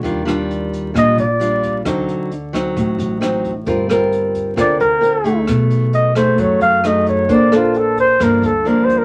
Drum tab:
HH |xxxxxxxx|xxxxxxxx|xxxxxxxx|xxxxxxxx|
SD |-r--r---|r--r--r-|-r--r---|r--r--r-|
BD |o--oo--o|o--oo--o|o--oo--o|o--oo--o|

HH |xxxxxxxx|
SD |-r--r---|
BD |o--oo--o|